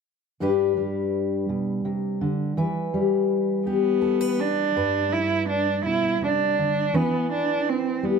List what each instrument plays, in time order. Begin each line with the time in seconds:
0.40 steel-string acoustic guitar G2 G3 D4 G4 B4
0.77 steel-string acoustic guitar G3
1.49 steel-string acoustic guitar B2
1.85 steel-string acoustic guitar C3
2.21 steel-string acoustic guitar D3
2.57 steel-string acoustic guitar E3 B4
2.94 steel-string acoustic guitar G3
3.67 cello B3, steel-string acoustic guitar G4
4.02 steel-string acoustic guitar A4
4.21 steel-string acoustic guitar B4
4.40 cello D4
4.76 steel-string acoustic guitar G2 B4
5.12 cello E4
5.49 cello D4
5.85 steel-string acoustic guitar B2, cello E4
6.21 steel-string acoustic guitar C3, cello D4
6.58 steel-string acoustic guitar D3
6.94 steel-string acoustic guitar E3 B4, cello B3
7.33 cello D4
7.69 cello C4
8.03 steel-string acoustic guitar G3, cello B3